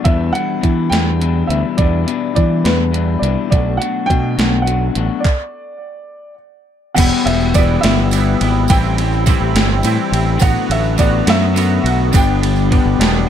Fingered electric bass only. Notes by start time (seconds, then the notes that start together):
0.05 E2
0.63 E3
0.91 E2
1.49 D2
1.79 E2
2.37 E3
2.65 E2
3.22 C2
3.52 B1
4.10 B2
4.38 B1
4.96 A1
6.98 E1
7.26 E1
7.84 G1
8.41 G#1
8.70 A1
9.40 A1
9.55 G1
9.84 A2
10.12 A1
10.42 A1
10.70 A1
11.27 F#2
11.84 B1
12.14 G1
12.85 G1
12.99 E1